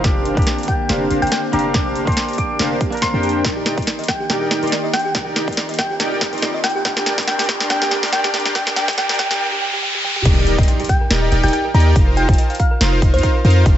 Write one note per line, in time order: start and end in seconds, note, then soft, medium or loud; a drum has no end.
0.00 6.81 A#3 medium
0.00 0.34 A#3 medium
0.00 3.41 C4 medium
0.04 0.35 F1 loud
0.04 3.41 D3 medium
0.04 0.34 D4 medium
0.04 5.11 G4 medium
0.04 0.34 G4 medium
0.04 0.35 G4 medium
0.04 0.34 A#4 medium
0.04 0.34 C5 medium
0.04 0.34 F5 medium
0.04 kick loud
0.04 snare medium
0.04 closed hi-hat medium
0.25 closed hi-hat medium
0.35 0.43 F1 medium
0.35 1.50 A#3 loud
0.35 1.51 D4 medium
0.35 0.45 D4 medium
0.35 0.45 G4 medium
0.35 0.45 A#4 medium
0.35 0.45 C5 medium
0.35 0.45 A#5 medium
0.35 kick loud
0.35 closed hi-hat soft
0.39 1.52 G4 loud
0.39 closed hi-hat medium
0.47 snare medium
0.47 closed hi-hat medium
0.58 closed hi-hat soft
0.63 closed hi-hat medium
0.68 0.84 G5 medium
0.68 kick medium
0.68 closed hi-hat medium
0.89 1.09 F1 loud
0.89 1.08 D4 medium
0.89 1.08 G4 medium
0.89 1.08 A#4 medium
0.89 1.08 C5 medium
0.89 1.08 F5 medium
0.89 snare medium
0.89 closed hi-hat medium
1.10 1.20 F1 loud
1.10 1.19 D4 loud
1.10 1.19 G4 medium
1.10 1.19 A#4 medium
1.10 1.19 C5 medium
1.10 1.19 F5 loud
1.10 closed hi-hat medium
1.22 1.28 F1 medium
1.22 1.30 D4 loud
1.22 1.30 G4 medium
1.22 1.30 A#4 medium
1.22 1.30 C5 medium
1.22 1.30 F5 loud
1.22 1.28 G5 medium
1.22 closed hi-hat soft
1.27 closed hi-hat medium
1.32 1.39 G5 medium
1.32 snare medium
1.32 closed hi-hat medium
1.52 1.72 F1 medium
1.52 1.72 A#3 medium
1.52 1.72 D4 medium
1.52 1.72 G4 medium
1.52 1.73 G4 loud
1.52 1.72 A#4 medium
1.52 1.72 C5 medium
1.52 1.72 F5 loud
1.52 1.69 A#5 medium
1.52 closed hi-hat soft
1.59 closed hi-hat medium
1.73 2.05 F1 loud
1.73 2.04 A#3 medium
1.73 2.04 D4 medium
1.73 2.05 D4 medium
1.73 2.05 G4 medium
1.73 kick loud
1.73 snare medium
1.73 closed hi-hat medium
1.96 closed hi-hat medium
2.05 2.13 F1 medium
2.05 2.89 A#3 medium
2.05 2.90 D4 medium
2.05 2.15 D4 medium
2.05 2.15 G4 medium
2.05 2.15 A#4 medium
2.05 2.15 A#5 loud
2.05 2.23 C6 medium
2.05 kick loud
2.05 closed hi-hat soft
2.09 2.91 G4 loud
2.09 closed hi-hat medium
2.17 snare medium
2.17 closed hi-hat medium
2.29 closed hi-hat soft
2.33 closed hi-hat medium
2.38 2.55 D6 medium
2.38 kick medium
2.38 closed hi-hat medium
2.59 2.77 F1 loud
2.59 2.79 D4 medium
2.59 2.79 G4 medium
2.59 2.79 A#4 medium
2.59 2.79 C5 medium
2.59 2.78 F5 medium
2.59 snare medium
2.59 closed hi-hat medium
2.81 kick loud
2.81 closed hi-hat medium
2.90 3.41 A#3 medium
2.90 3.42 D4 medium
2.90 closed hi-hat soft
2.94 3.43 A#4 medium
2.94 closed hi-hat medium
3.02 3.45 C6 medium
3.02 kick medium
3.02 snare medium
3.02 closed hi-hat medium
3.14 3.43 F2 medium
3.14 3.42 D4 medium
3.14 3.42 G4 medium
3.14 3.42 A#4 medium
3.14 3.42 C5 medium
3.14 3.42 G5 medium
3.23 closed hi-hat soft
3.29 closed hi-hat medium
3.45 3.75 D#1 loud
3.45 6.82 D#3 medium
3.45 5.13 D4 medium
3.45 3.75 A#4 medium
3.45 3.49 G5 medium
3.45 kick loud
3.45 snare medium
3.45 closed hi-hat medium
3.45 riser medium
3.56 3.64 G4 medium
3.66 3.76 G4 medium
3.66 snare medium
3.66 closed hi-hat medium
3.78 3.83 D#1 loud
3.78 3.85 D#4 medium
3.78 3.85 G4 medium
3.78 3.85 A#4 medium
3.78 3.83 A#4 medium
3.78 3.85 D5 medium
3.78 3.85 C6 medium
3.78 kick loud
3.78 closed hi-hat soft
3.82 closed hi-hat medium
3.87 3.91 D5 medium
3.87 snare medium
3.87 closed hi-hat medium
3.99 4.04 D#5 medium
3.99 closed hi-hat soft
4.04 closed hi-hat medium
4.08 4.12 G5 loud
4.08 4.25 G5 medium
4.08 kick medium
4.08 snare medium
4.20 4.28 G4 medium
4.30 4.60 D#1 loud
4.30 4.60 D#4 medium
4.30 4.60 G4 medium
4.30 4.60 A#4 medium
4.30 4.60 D5 medium
4.30 4.34 G5 medium
4.30 4.60 G5 medium
4.30 snare medium
4.30 closed hi-hat medium
4.41 4.49 G4 loud
4.51 4.61 G4 medium
4.51 snare medium
4.51 closed hi-hat medium
4.63 4.69 D#1 medium
4.63 4.70 D#4 medium
4.63 4.70 G4 medium
4.63 4.68 A#4 medium
4.63 4.70 A#4 medium
4.63 4.70 D5 medium
4.63 4.70 C6 medium
4.63 closed hi-hat soft
4.67 closed hi-hat medium
4.72 4.76 D5 medium
4.72 snare medium
4.72 closed hi-hat medium
4.84 4.89 D#5 loud
4.93 4.97 G5 loud
4.93 5.10 G5 medium
4.93 snare medium
4.93 closed hi-hat soft
4.99 closed hi-hat medium
5.05 5.13 G4 medium
5.15 5.45 F1 loud
5.15 6.83 C4 medium
5.15 5.45 D#4 medium
5.15 6.83 F4 loud
5.15 5.45 G4 medium
5.15 5.45 A#4 medium
5.15 5.45 D5 medium
5.15 5.19 G5 medium
5.15 5.45 G5 medium
5.15 kick loud
5.15 snare medium
5.15 closed hi-hat medium
5.26 5.35 G4 loud
5.36 5.46 G4 medium
5.36 snare medium
5.36 closed hi-hat medium
5.48 5.54 F1 loud
5.48 5.56 D#4 medium
5.48 5.56 G4 medium
5.48 5.53 A#4 medium
5.48 5.56 A#4 medium
5.48 5.56 D5 medium
5.48 5.56 C6 medium
5.48 kick loud
5.48 closed hi-hat soft
5.53 closed hi-hat medium
5.57 5.61 D5 medium
5.57 snare medium
5.57 closed hi-hat medium
5.69 5.74 D#5 loud
5.69 closed hi-hat soft
5.74 closed hi-hat medium
5.79 5.83 G5 loud
5.79 5.95 G5 medium
5.79 kick medium
5.79 snare medium
5.79 closed hi-hat medium
5.90 5.98 G4 loud
6.00 6.31 F1 medium
6.00 6.30 D#4 medium
6.00 6.30 G4 medium
6.00 6.30 A#4 medium
6.00 6.30 D5 medium
6.00 6.04 G5 medium
6.00 6.30 G5 medium
6.00 snare medium
6.00 closed hi-hat medium
6.12 6.20 G4 loud
6.21 6.31 G4 medium
6.21 kick loud
6.21 snare medium
6.21 closed hi-hat medium
6.33 6.39 F1 medium
6.33 6.41 D#4 medium
6.33 6.41 G4 medium
6.33 6.41 A#4 medium
6.33 6.38 A#4 medium
6.33 6.41 D5 medium
6.33 6.41 C6 medium
6.33 closed hi-hat soft
6.38 closed hi-hat medium
6.42 6.46 D5 medium
6.42 kick medium
6.42 snare medium
6.42 closed hi-hat medium
6.54 6.60 D#5 loud
6.64 6.68 G5 loud
6.64 6.80 G5 medium
6.64 snare medium
6.64 closed hi-hat soft
6.70 closed hi-hat medium
6.75 6.83 G4 loud
6.85 7.16 F1 loud
6.85 9.38 D3 medium
6.85 9.38 A#3 medium
6.85 9.38 C4 medium
6.85 7.15 D4 medium
6.85 7.15 G4 medium
6.85 9.38 G4 loud
6.85 7.15 A#4 medium
6.85 7.15 D5 medium
6.85 7.01 G5 medium
6.85 6.89 G5 loud
6.85 7.15 G5 medium
6.85 kick loud
6.85 snare medium
6.85 closed hi-hat medium
6.97 7.05 G4 loud
6.97 snare medium
7.06 7.16 G4 medium
7.06 snare medium
7.06 closed hi-hat medium
7.18 7.26 F1 loud
7.18 7.26 D4 medium
7.18 7.23 A#4 medium
7.18 kick loud
7.18 snare medium
7.18 closed hi-hat medium
7.23 closed hi-hat medium
7.27 7.58 F1 medium
7.27 7.58 D4 medium
7.27 7.58 G4 medium
7.27 7.58 A#4 medium
7.27 7.58 D5 medium
7.27 7.44 G5 medium
7.27 7.31 G5 loud
7.27 7.58 G5 medium
7.27 snare loud
7.27 closed hi-hat medium
7.39 7.47 G4 loud
7.39 snare medium
7.39 closed hi-hat medium
7.44 closed hi-hat medium
7.49 7.59 G4 medium
7.49 kick medium
7.49 snare medium
7.49 closed hi-hat medium
7.60 7.68 F1 loud
7.60 7.68 D4 medium
7.60 7.68 G4 medium
7.60 7.66 A#4 medium
7.60 7.68 A#4 medium
7.60 7.68 D5 medium
7.60 7.68 C6 loud
7.60 snare medium
7.70 8.01 F1 loud
7.70 8.00 D4 medium
7.70 8.00 G4 medium
7.70 8.00 A#4 medium
7.70 8.00 D5 medium
7.70 7.86 G5 medium
7.70 7.74 G5 loud
7.70 8.00 G5 medium
7.70 snare medium
7.70 closed hi-hat medium
7.82 7.90 G4 loud
7.82 snare medium
7.91 8.01 G4 medium
7.91 snare loud
7.91 closed hi-hat medium
8.03 8.11 F1 medium
8.03 8.11 D4 medium
8.03 8.11 G4 medium
8.03 8.11 A#4 medium
8.03 8.08 A#4 medium
8.03 8.11 D5 medium
8.03 8.11 C6 loud
8.03 snare medium
8.03 closed hi-hat medium
8.08 closed hi-hat medium
8.13 8.43 F1 loud
8.13 8.43 D4 medium
8.13 8.43 G4 medium
8.13 8.43 A#4 medium
8.13 8.43 D5 medium
8.13 8.29 G5 medium
8.13 8.43 G5 medium
8.13 8.17 G5 loud
8.13 snare medium
8.13 closed hi-hat medium
8.24 8.32 G4 loud
8.24 snare medium
8.34 8.44 G4 medium
8.34 snare loud
8.34 closed hi-hat medium
8.40 closed hi-hat medium
8.46 8.53 F1 loud
8.46 8.53 D4 medium
8.46 8.53 G4 medium
8.46 8.51 A#4 medium
8.46 8.53 A#4 medium
8.46 8.53 D5 medium
8.46 8.53 C6 loud
8.46 snare medium
8.55 8.75 F1 loud
8.55 8.75 D4 medium
8.55 8.75 D5 medium
8.55 8.71 G5 medium
8.55 8.59 G5 loud
8.55 kick loud
8.55 snare loud
8.55 closed hi-hat medium
8.67 8.75 G4 loud
8.67 snare medium
8.76 8.96 F1 medium
8.76 8.96 D4 medium
8.76 8.96 G4 medium
8.76 8.96 A#4 medium
8.76 8.96 D5 medium
8.76 8.93 G5 medium
8.76 8.96 G5 medium
8.76 8.80 G5 loud
8.76 snare loud
8.76 closed hi-hat medium
8.88 8.96 G4 loud
8.88 kick loud
8.88 snare medium
8.88 closed hi-hat medium
8.93 closed hi-hat medium
8.98 9.17 F1 loud
8.98 9.18 D4 medium
8.98 9.18 G4 medium
8.98 9.18 A#4 medium
8.98 9.18 D5 medium
8.98 9.14 G5 loud
8.98 9.18 G5 medium
8.98 9.02 G5 loud
8.98 snare loud
8.98 closed hi-hat medium
9.09 9.18 G4 loud
9.09 snare medium
9.09 closed hi-hat medium
9.14 closed hi-hat medium
9.19 9.38 F1 medium
9.19 9.39 D4 medium
9.19 9.39 G4 medium
9.19 9.39 A#4 medium
9.19 9.39 D5 medium
9.19 9.35 G5 medium
9.19 9.39 G5 medium
9.19 9.23 G5 loud
9.19 kick medium
9.19 snare loud
9.19 closed hi-hat medium
9.31 9.39 G4 loud
9.31 snare loud
9.40 9.44 G5 loud
9.52 9.60 G4 loud
9.62 9.66 G5 loud
9.73 9.81 G4 loud
9.83 9.87 G5 loud
9.95 10.03 G4 loud
10.04 10.08 G5 loud
10.04 high tom medium
10.16 10.24 G4 loud
10.16 mid tom medium
10.25 10.56 D#1 loud
10.25 10.56 D#4 medium
10.25 10.56 G4 medium
10.25 10.35 G4 medium
10.25 10.56 A#4 medium
10.25 10.56 D5 medium
10.25 10.56 G5 medium
10.25 kick loud
10.25 closed hi-hat medium
10.25 crash loud
10.25 impact medium
10.37 10.43 A#4 medium
10.47 10.51 D5 medium
10.47 closed hi-hat medium
10.58 10.64 D#1 loud
10.58 10.66 D#4 medium
10.58 10.66 G4 medium
10.58 10.66 A#4 medium
10.58 10.66 D5 medium
10.58 10.64 D#5 loud
10.58 10.66 C6 loud
10.58 kick loud
10.58 closed hi-hat medium
10.63 closed hi-hat medium
10.68 10.72 G5 loud
10.68 closed hi-hat medium
10.80 10.88 G4 loud
10.80 closed hi-hat medium
10.84 closed hi-hat medium
10.89 10.99 G4 medium
10.89 11.06 G5 medium
10.89 kick medium
10.89 closed hi-hat medium
11.01 11.06 A#4 medium
11.10 11.30 D#1 loud
11.10 11.30 D#4 medium
11.10 11.30 G4 medium
11.10 11.30 A#4 medium
11.10 11.30 D5 medium
11.10 11.15 D5 medium
11.10 11.30 G5 medium
11.10 snare loud
11.10 closed hi-hat medium
11.22 11.28 D#5 loud
11.32 11.41 D#1 loud
11.32 11.41 D#4 loud
11.32 11.41 G4 medium
11.32 11.41 A#4 medium
11.32 11.41 D5 medium
11.32 11.41 G5 loud
11.32 11.36 G5 loud
11.32 closed hi-hat medium
11.43 11.49 D#1 medium
11.43 11.51 D#4 loud
11.43 11.51 G4 medium
11.43 11.52 G4 loud
11.43 11.51 A#4 medium
11.43 11.51 D5 medium
11.43 11.51 G5 loud
11.43 11.50 G5 medium
11.43 closed hi-hat medium
11.48 closed hi-hat medium
11.53 11.63 G4 medium
11.53 11.61 G5 medium
11.53 closed hi-hat medium
11.65 11.70 A#4 medium
11.74 11.94 D#2 loud
11.74 11.93 D#4 loud
11.74 11.93 G4 medium
11.74 11.93 A#4 medium
11.74 11.78 D5 medium
11.74 11.93 D5 medium
11.74 11.93 G5 loud
11.74 11.91 A#5 medium
11.74 closed hi-hat medium
11.80 closed hi-hat medium
11.86 11.91 D#5 loud
11.96 12.26 F1 loud
11.96 12.26 D#4 medium
11.96 12.26 F4 medium
11.96 12.26 A#4 medium
11.96 12.26 C5 medium
11.96 12.26 F5 medium
11.96 12.00 A#5 loud
11.96 kick loud
11.96 closed hi-hat medium
12.07 12.15 A#4 loud
12.17 12.27 A#4 medium
12.17 12.58 G5 medium
12.17 closed hi-hat medium
12.29 12.35 F1 loud
12.29 12.34 C5 medium
12.29 kick loud
12.29 closed hi-hat soft
12.34 closed hi-hat medium
12.38 12.42 D#5 medium
12.38 closed hi-hat medium
12.50 12.55 F5 loud
12.50 closed hi-hat soft
12.55 closed hi-hat medium
12.59 12.92 F5 medium
12.59 12.63 A#5 loud
12.59 kick medium
12.59 closed hi-hat medium
12.71 12.79 A#4 loud
12.81 13.00 F1 loud
12.81 13.00 D#4 medium
12.81 13.00 F4 medium
12.81 12.91 A#4 medium
12.81 13.00 A#4 medium
12.81 13.00 C5 medium
12.81 13.00 F5 medium
12.81 snare loud
12.81 closed hi-hat medium
12.92 12.98 C5 medium
13.02 13.15 F1 medium
13.02 13.11 D#4 loud
13.02 13.11 F4 medium
13.02 13.11 A#4 medium
13.02 13.11 C5 medium
13.02 13.06 D#5 medium
13.02 13.11 F5 loud
13.02 kick loud
13.02 closed hi-hat medium
13.14 13.20 F2 medium
13.14 13.22 D#4 loud
13.14 13.22 F4 medium
13.14 13.22 A#4 medium
13.14 13.56 C5 medium
13.14 13.22 C5 medium
13.14 13.19 F5 loud
13.14 13.22 F5 loud
13.14 closed hi-hat soft
13.19 closed hi-hat medium
13.23 13.27 A#5 loud
13.23 kick medium
13.23 closed hi-hat medium
13.35 13.43 A#4 loud
13.45 13.64 F2 loud
13.45 13.64 D#4 loud
13.45 13.64 F4 medium
13.45 13.54 A#4 medium
13.45 13.64 A#4 medium
13.45 13.64 C5 medium
13.45 13.64 F5 loud
13.45 closed hi-hat medium
13.50 closed hi-hat medium
13.56 13.62 C5 medium
13.66 13.78 F1 loud
13.66 13.78 G4 medium
13.66 13.70 C5 medium
13.66 kick loud
13.66 closed hi-hat medium